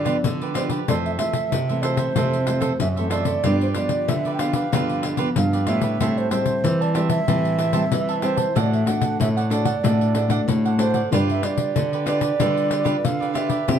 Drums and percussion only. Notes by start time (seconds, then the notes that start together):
0.06 pandeiro
0.24 pandeiro
0.42 pandeiro
0.55 pandeiro
0.70 pandeiro
0.88 pandeiro
1.06 pandeiro
1.19 pandeiro
1.33 pandeiro
1.52 pandeiro
1.69 pandeiro
1.83 pandeiro
1.97 pandeiro
2.16 pandeiro
2.33 pandeiro
2.47 pandeiro
2.62 pandeiro
2.80 pandeiro
2.97 pandeiro
3.11 pandeiro
3.25 pandeiro
3.44 pandeiro
3.61 pandeiro
3.74 pandeiro
3.89 pandeiro
4.09 pandeiro
4.25 pandeiro
4.39 pandeiro
4.53 pandeiro
4.73 pandeiro
4.90 pandeiro
5.03 pandeiro
5.17 pandeiro
5.36 pandeiro
5.53 pandeiro
5.67 pandeiro
5.81 pandeiro
6.00 pandeiro
6.18 pandeiro
6.31 pandeiro
6.46 pandeiro
6.64 pandeiro
6.82 pandeiro
6.95 pandeiro
7.09 pandeiro
7.28 pandeiro
7.45 pandeiro
7.59 pandeiro
7.73 pandeiro
7.92 pandeiro
8.09 pandeiro
8.22 pandeiro
8.37 pandeiro
8.56 pandeiro
8.73 pandeiro
8.87 pandeiro
9.01 pandeiro
9.20 pandeiro
9.37 pandeiro
9.51 pandeiro
9.65 pandeiro
9.84 pandeiro
10.01 pandeiro
10.15 pandeiro
10.30 pandeiro
10.48 pandeiro
10.66 pandeiro
10.79 pandeiro
10.94 pandeiro
11.12 pandeiro
11.30 pandeiro
11.43 pandeiro
11.57 pandeiro
11.76 pandeiro
11.93 pandeiro
12.07 pandeiro
12.21 pandeiro
12.40 pandeiro
12.57 pandeiro
12.71 pandeiro
12.86 pandeiro
13.05 pandeiro
13.22 pandeiro
13.35 pandeiro
13.50 pandeiro
13.68 pandeiro